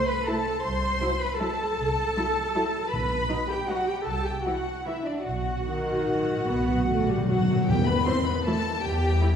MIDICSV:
0, 0, Header, 1, 8, 480
1, 0, Start_track
1, 0, Key_signature, 1, "minor"
1, 0, Tempo, 380228
1, 814, Time_signature, 3, 2, 24, 8
1, 5624, Tempo, 405132
1, 8984, Tempo, 387847
1, 11543, End_track
2, 0, Start_track
2, 0, Title_t, "Violin section"
2, 0, Program_c, 0, 48
2, 88, Note_on_c, 0, 83, 73
2, 340, Note_on_c, 0, 81, 81
2, 343, Note_off_c, 0, 83, 0
2, 803, Note_on_c, 0, 84, 83
2, 808, Note_off_c, 0, 81, 0
2, 1519, Note_on_c, 0, 83, 74
2, 1531, Note_off_c, 0, 84, 0
2, 1762, Note_on_c, 0, 81, 89
2, 1774, Note_off_c, 0, 83, 0
2, 3648, Note_off_c, 0, 81, 0
2, 3688, Note_on_c, 0, 83, 80
2, 4415, Note_off_c, 0, 83, 0
2, 4430, Note_on_c, 0, 79, 67
2, 4672, Note_on_c, 0, 78, 75
2, 4673, Note_off_c, 0, 79, 0
2, 4905, Note_off_c, 0, 78, 0
2, 4912, Note_on_c, 0, 79, 68
2, 5138, Note_on_c, 0, 81, 72
2, 5140, Note_off_c, 0, 79, 0
2, 5372, Note_off_c, 0, 81, 0
2, 5374, Note_on_c, 0, 79, 57
2, 5616, Note_on_c, 0, 78, 67
2, 5623, Note_off_c, 0, 79, 0
2, 6102, Note_off_c, 0, 78, 0
2, 6124, Note_on_c, 0, 76, 67
2, 6345, Note_off_c, 0, 76, 0
2, 6345, Note_on_c, 0, 74, 56
2, 6571, Note_off_c, 0, 74, 0
2, 6573, Note_on_c, 0, 78, 64
2, 8937, Note_off_c, 0, 78, 0
2, 8986, Note_on_c, 0, 78, 78
2, 9432, Note_off_c, 0, 78, 0
2, 9475, Note_on_c, 0, 79, 88
2, 9697, Note_on_c, 0, 83, 90
2, 9701, Note_off_c, 0, 79, 0
2, 9930, Note_on_c, 0, 84, 95
2, 9944, Note_off_c, 0, 83, 0
2, 10184, Note_on_c, 0, 83, 81
2, 10188, Note_off_c, 0, 84, 0
2, 10436, Note_off_c, 0, 83, 0
2, 10447, Note_on_c, 0, 81, 102
2, 10898, Note_off_c, 0, 81, 0
2, 10915, Note_on_c, 0, 79, 93
2, 11543, Note_off_c, 0, 79, 0
2, 11543, End_track
3, 0, Start_track
3, 0, Title_t, "Violin section"
3, 0, Program_c, 1, 48
3, 113, Note_on_c, 1, 83, 78
3, 341, Note_on_c, 1, 81, 83
3, 350, Note_off_c, 1, 83, 0
3, 796, Note_on_c, 1, 84, 86
3, 808, Note_off_c, 1, 81, 0
3, 1527, Note_off_c, 1, 84, 0
3, 1536, Note_on_c, 1, 83, 79
3, 1777, Note_on_c, 1, 81, 86
3, 1783, Note_off_c, 1, 83, 0
3, 3656, Note_off_c, 1, 81, 0
3, 3681, Note_on_c, 1, 83, 93
3, 4412, Note_off_c, 1, 83, 0
3, 4426, Note_on_c, 1, 79, 69
3, 4666, Note_off_c, 1, 79, 0
3, 4688, Note_on_c, 1, 78, 76
3, 4914, Note_on_c, 1, 79, 65
3, 4918, Note_off_c, 1, 78, 0
3, 5005, Note_off_c, 1, 79, 0
3, 5137, Note_on_c, 1, 81, 84
3, 5366, Note_off_c, 1, 81, 0
3, 5380, Note_on_c, 1, 79, 68
3, 5625, Note_on_c, 1, 78, 67
3, 5627, Note_off_c, 1, 79, 0
3, 6097, Note_off_c, 1, 78, 0
3, 6111, Note_on_c, 1, 76, 64
3, 6343, Note_off_c, 1, 76, 0
3, 6372, Note_on_c, 1, 74, 56
3, 6571, Note_on_c, 1, 78, 74
3, 6584, Note_off_c, 1, 74, 0
3, 8980, Note_on_c, 1, 66, 72
3, 8984, Note_off_c, 1, 78, 0
3, 9429, Note_off_c, 1, 66, 0
3, 9464, Note_on_c, 1, 67, 92
3, 9557, Note_off_c, 1, 67, 0
3, 9691, Note_on_c, 1, 71, 92
3, 9936, Note_off_c, 1, 71, 0
3, 9960, Note_on_c, 1, 72, 101
3, 10057, Note_off_c, 1, 72, 0
3, 10199, Note_on_c, 1, 71, 73
3, 10439, Note_off_c, 1, 71, 0
3, 10440, Note_on_c, 1, 69, 89
3, 10904, Note_off_c, 1, 69, 0
3, 10918, Note_on_c, 1, 67, 93
3, 11543, Note_off_c, 1, 67, 0
3, 11543, End_track
4, 0, Start_track
4, 0, Title_t, "Cello section"
4, 0, Program_c, 2, 48
4, 100, Note_on_c, 2, 71, 89
4, 339, Note_on_c, 2, 69, 78
4, 349, Note_off_c, 2, 71, 0
4, 800, Note_on_c, 2, 72, 94
4, 807, Note_off_c, 2, 69, 0
4, 1514, Note_off_c, 2, 72, 0
4, 1525, Note_on_c, 2, 71, 89
4, 1761, Note_on_c, 2, 69, 87
4, 1777, Note_off_c, 2, 71, 0
4, 3686, Note_off_c, 2, 69, 0
4, 3692, Note_on_c, 2, 71, 91
4, 4403, Note_off_c, 2, 71, 0
4, 4420, Note_on_c, 2, 67, 77
4, 4667, Note_off_c, 2, 67, 0
4, 4668, Note_on_c, 2, 66, 73
4, 4898, Note_on_c, 2, 67, 83
4, 4908, Note_off_c, 2, 66, 0
4, 5129, Note_on_c, 2, 69, 86
4, 5133, Note_off_c, 2, 67, 0
4, 5362, Note_on_c, 2, 67, 69
4, 5367, Note_off_c, 2, 69, 0
4, 5617, Note_on_c, 2, 66, 67
4, 5618, Note_off_c, 2, 67, 0
4, 6103, Note_off_c, 2, 66, 0
4, 6104, Note_on_c, 2, 64, 62
4, 6335, Note_off_c, 2, 64, 0
4, 6340, Note_on_c, 2, 62, 71
4, 6568, Note_off_c, 2, 62, 0
4, 6569, Note_on_c, 2, 66, 73
4, 8935, Note_off_c, 2, 66, 0
4, 8981, Note_on_c, 2, 54, 65
4, 9429, Note_off_c, 2, 54, 0
4, 9473, Note_on_c, 2, 55, 82
4, 9700, Note_off_c, 2, 55, 0
4, 9705, Note_on_c, 2, 59, 86
4, 9948, Note_off_c, 2, 59, 0
4, 9948, Note_on_c, 2, 60, 84
4, 10197, Note_off_c, 2, 60, 0
4, 10199, Note_on_c, 2, 59, 75
4, 10443, Note_off_c, 2, 59, 0
4, 10445, Note_on_c, 2, 57, 66
4, 10907, Note_off_c, 2, 57, 0
4, 10919, Note_on_c, 2, 55, 86
4, 11543, Note_off_c, 2, 55, 0
4, 11543, End_track
5, 0, Start_track
5, 0, Title_t, "Viola section"
5, 0, Program_c, 3, 48
5, 343, Note_on_c, 3, 57, 57
5, 346, Note_on_c, 3, 64, 61
5, 444, Note_off_c, 3, 57, 0
5, 447, Note_off_c, 3, 64, 0
5, 1277, Note_on_c, 3, 54, 61
5, 1277, Note_on_c, 3, 64, 63
5, 1378, Note_off_c, 3, 54, 0
5, 1378, Note_off_c, 3, 64, 0
5, 1767, Note_on_c, 3, 64, 58
5, 1770, Note_on_c, 3, 54, 59
5, 1868, Note_off_c, 3, 64, 0
5, 1871, Note_off_c, 3, 54, 0
5, 2731, Note_on_c, 3, 54, 57
5, 2735, Note_on_c, 3, 64, 60
5, 2832, Note_off_c, 3, 54, 0
5, 2836, Note_off_c, 3, 64, 0
5, 3216, Note_on_c, 3, 64, 57
5, 3219, Note_on_c, 3, 54, 59
5, 3317, Note_off_c, 3, 64, 0
5, 3320, Note_off_c, 3, 54, 0
5, 4157, Note_on_c, 3, 63, 60
5, 4160, Note_on_c, 3, 54, 55
5, 4258, Note_off_c, 3, 63, 0
5, 4261, Note_off_c, 3, 54, 0
5, 4652, Note_on_c, 3, 54, 56
5, 4653, Note_on_c, 3, 63, 54
5, 4753, Note_off_c, 3, 54, 0
5, 4754, Note_off_c, 3, 63, 0
5, 5628, Note_on_c, 3, 52, 49
5, 5628, Note_on_c, 3, 64, 52
5, 5723, Note_off_c, 3, 52, 0
5, 5723, Note_off_c, 3, 64, 0
5, 6108, Note_on_c, 3, 52, 54
5, 6110, Note_on_c, 3, 64, 52
5, 6203, Note_off_c, 3, 52, 0
5, 6205, Note_off_c, 3, 64, 0
5, 7049, Note_on_c, 3, 51, 65
5, 7973, Note_off_c, 3, 51, 0
5, 8015, Note_on_c, 3, 59, 62
5, 8479, Note_on_c, 3, 57, 67
5, 8489, Note_off_c, 3, 59, 0
5, 8728, Note_off_c, 3, 57, 0
5, 8733, Note_on_c, 3, 55, 63
5, 8971, Note_on_c, 3, 54, 64
5, 8980, Note_off_c, 3, 55, 0
5, 9069, Note_off_c, 3, 54, 0
5, 9238, Note_on_c, 3, 54, 52
5, 9463, Note_off_c, 3, 54, 0
5, 9941, Note_on_c, 3, 52, 64
5, 9944, Note_on_c, 3, 64, 61
5, 10040, Note_off_c, 3, 52, 0
5, 10043, Note_off_c, 3, 64, 0
5, 10439, Note_on_c, 3, 52, 66
5, 10441, Note_on_c, 3, 64, 60
5, 10538, Note_off_c, 3, 52, 0
5, 10540, Note_off_c, 3, 64, 0
5, 11363, Note_on_c, 3, 52, 65
5, 11366, Note_on_c, 3, 64, 58
5, 11462, Note_off_c, 3, 52, 0
5, 11465, Note_off_c, 3, 64, 0
5, 11543, End_track
6, 0, Start_track
6, 0, Title_t, "Timpani"
6, 0, Program_c, 4, 47
6, 3703, Note_on_c, 4, 47, 71
6, 4373, Note_off_c, 4, 47, 0
6, 6577, Note_on_c, 4, 47, 27
6, 6652, Note_off_c, 4, 47, 0
6, 6747, Note_on_c, 4, 47, 33
6, 6826, Note_off_c, 4, 47, 0
6, 6840, Note_on_c, 4, 47, 33
6, 6927, Note_off_c, 4, 47, 0
6, 6942, Note_on_c, 4, 47, 32
6, 7018, Note_off_c, 4, 47, 0
6, 7033, Note_on_c, 4, 47, 35
6, 7117, Note_off_c, 4, 47, 0
6, 7131, Note_on_c, 4, 47, 37
6, 7220, Note_off_c, 4, 47, 0
6, 7240, Note_on_c, 4, 47, 37
6, 7310, Note_off_c, 4, 47, 0
6, 7324, Note_on_c, 4, 47, 35
6, 7407, Note_off_c, 4, 47, 0
6, 7421, Note_on_c, 4, 47, 37
6, 7511, Note_off_c, 4, 47, 0
6, 7526, Note_on_c, 4, 47, 45
6, 7602, Note_off_c, 4, 47, 0
6, 7616, Note_on_c, 4, 47, 44
6, 7702, Note_off_c, 4, 47, 0
6, 7719, Note_on_c, 4, 47, 44
6, 7794, Note_off_c, 4, 47, 0
6, 7808, Note_on_c, 4, 47, 42
6, 7887, Note_off_c, 4, 47, 0
6, 7900, Note_on_c, 4, 47, 48
6, 7976, Note_off_c, 4, 47, 0
6, 7990, Note_on_c, 4, 47, 56
6, 8059, Note_off_c, 4, 47, 0
6, 8074, Note_on_c, 4, 47, 47
6, 8151, Note_off_c, 4, 47, 0
6, 8164, Note_on_c, 4, 47, 50
6, 8229, Note_off_c, 4, 47, 0
6, 8243, Note_on_c, 4, 47, 56
6, 8325, Note_off_c, 4, 47, 0
6, 8339, Note_on_c, 4, 47, 62
6, 8425, Note_off_c, 4, 47, 0
6, 8440, Note_on_c, 4, 47, 61
6, 8524, Note_off_c, 4, 47, 0
6, 8538, Note_on_c, 4, 47, 61
6, 8613, Note_off_c, 4, 47, 0
6, 8628, Note_on_c, 4, 47, 71
6, 8714, Note_off_c, 4, 47, 0
6, 8729, Note_on_c, 4, 47, 70
6, 8808, Note_off_c, 4, 47, 0
6, 8823, Note_on_c, 4, 47, 62
6, 8906, Note_off_c, 4, 47, 0
6, 8918, Note_on_c, 4, 47, 77
6, 8993, Note_off_c, 4, 47, 0
6, 9007, Note_on_c, 4, 47, 74
6, 9095, Note_off_c, 4, 47, 0
6, 9113, Note_on_c, 4, 47, 82
6, 9180, Note_off_c, 4, 47, 0
6, 9195, Note_on_c, 4, 47, 78
6, 9276, Note_off_c, 4, 47, 0
6, 9291, Note_on_c, 4, 47, 80
6, 9374, Note_off_c, 4, 47, 0
6, 9476, Note_on_c, 4, 40, 91
6, 10151, Note_off_c, 4, 40, 0
6, 11543, End_track
7, 0, Start_track
7, 0, Title_t, "Double bass section"
7, 0, Program_c, 5, 48
7, 810, Note_on_c, 5, 36, 72
7, 1201, Note_off_c, 5, 36, 0
7, 2251, Note_on_c, 5, 36, 71
7, 2646, Note_off_c, 5, 36, 0
7, 3688, Note_on_c, 5, 35, 68
7, 4082, Note_off_c, 5, 35, 0
7, 5138, Note_on_c, 5, 36, 62
7, 5537, Note_off_c, 5, 36, 0
7, 6576, Note_on_c, 5, 35, 56
7, 6965, Note_off_c, 5, 35, 0
7, 8023, Note_on_c, 5, 35, 58
7, 8411, Note_off_c, 5, 35, 0
7, 9470, Note_on_c, 5, 40, 78
7, 9863, Note_off_c, 5, 40, 0
7, 10910, Note_on_c, 5, 40, 74
7, 11297, Note_off_c, 5, 40, 0
7, 11543, End_track
8, 0, Start_track
8, 0, Title_t, "Tam-tam"
8, 9465, Note_on_c, 9, 52, 62
8, 9589, Note_off_c, 9, 52, 0
8, 11543, End_track
0, 0, End_of_file